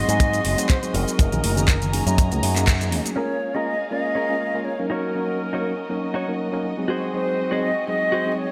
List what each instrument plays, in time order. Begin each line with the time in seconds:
Already playing: tine electric piano F#3 G#3 C4 D#4 G#4, violin section F#4 D#5 G#5 C6, flute D#5
0.08 picked electric bass G#2, closed hi-hat, high conga, shaker
0.20 kick, closed hi-hat, shaker
0.33 tine electric piano F#3 G#3 C4 D#4 G#4, closed hi-hat, muted conga, shaker
0.45 picked electric bass F#1, open hi-hat
0.58 tine electric piano F#3 G#3 C4 D#4 G#4, closed hi-hat, high conga, shaker
0.69 flute C5, kick, clap, closed hi-hat, shaker
0.82 tine electric piano F#3 G#3 C4 D#4 G#4, closed hi-hat, shaker
0.94 picked electric bass F#1, flute A#4, open hi-hat, muted conga
1.08 shaker
1.18 picked electric bass F#1, tine electric piano F#3 A#3 C#4 D#4 G#4, violin section G#5 A#5, kick, closed hi-hat, shaker
1.32 picked electric bass A#1, closed hi-hat, low conga, shaker
1.44 picked electric bass F#1, open hi-hat, high conga
1.56 tine electric piano F#3 A#3 C#4 D#4 G#4, closed hi-hat, low conga, shaker
1.68 kick, clap, closed hi-hat, shaker
1.82 closed hi-hat, low conga, shaker
1.93 tine electric piano F#3 A#3 C#4 D#4 G#4, open hi-hat
2.06 picked electric bass F#2, closed hi-hat, muted conga, high conga, shaker
2.18 kick, closed hi-hat, shaker
2.31 picked electric bass C#2, tine electric piano F#3 A#3 C#4 D#4 G#4, closed hi-hat, high conga, shaker
2.43 picked electric bass F#2, open hi-hat
2.56 tine electric piano F#3 A#3 C#4 D#4 G#4, clap, closed hi-hat, shaker
2.67 kick, clap, closed hi-hat, shaker
2.80 tine electric piano F#3 A#3 C#4 D#4 G#4, closed hi-hat, shaker
2.92 open hi-hat, muted conga
3.05 closed hi-hat, high conga, shaker
3.16 tine electric piano G#3 A#3 C#4 F4 A#4, clean electric guitar C#4 G#4 A#4, violin section C#4 G#4 A#4 F5, flute C#5
3.54 tine electric piano G#3 A#3 C#4 F4 A#4, clean electric guitar C#4 G#4 A#4, flute D#5
3.90 tine electric piano G#3 A#3 C#4 F4 A#4, flute D#5, muted clean electric guitar stroke
4.15 clean electric guitar C#4 G#4 A#4
4.29 tine electric piano G#3 A#3 C#4 F4 A#4
4.54 tine electric piano G#3 A#3 C#4 F4 A#4, muted clean electric guitar stroke
4.65 flute C#5
4.79 tine electric piano F#3 A#3 C#4 D#4 A#4
4.90 clean electric guitar D#4 F#4 C#5, violin section F#4 D#5, flute A#4
5.15 tine electric piano F#3 A#3 C#4 D#4 A#4
5.53 tine electric piano F#3 A#3 C#4 D#4 A#4, clean electric guitar D#4 F#4 C#5
5.89 tine electric piano F#3 A#3 C#4 D#4 A#4, muted clean electric guitar stroke
6.14 clean electric guitar D#4 F#4 C#5
6.28 tine electric piano F#3 A#3 C#4 D#4 A#4
6.52 tine electric piano F#3 A#3 C#4 D#4 A#4, muted clean electric guitar stroke
6.77 tine electric piano F#3 G#3 C4 D#4 G#4
6.88 violin section C4 G#4, clean electric guitar F#4 G#4 C5
7.14 tine electric piano F#3 G#3 C4 D#4 G#4, flute C5
7.51 tine electric piano F#3 G#3 C4 D#4 G#4, clean electric guitar F#4 G#4 C5, flute D#5
7.87 tine electric piano F#3 G#3 C4 D#4 G#4, flute D#5, muted clean electric guitar stroke
8.12 clean electric guitar F#4 G#4 C5
8.25 tine electric piano F#3 G#3 C4 D#4 G#4
8.32 flute D#5
8.38 flute C#5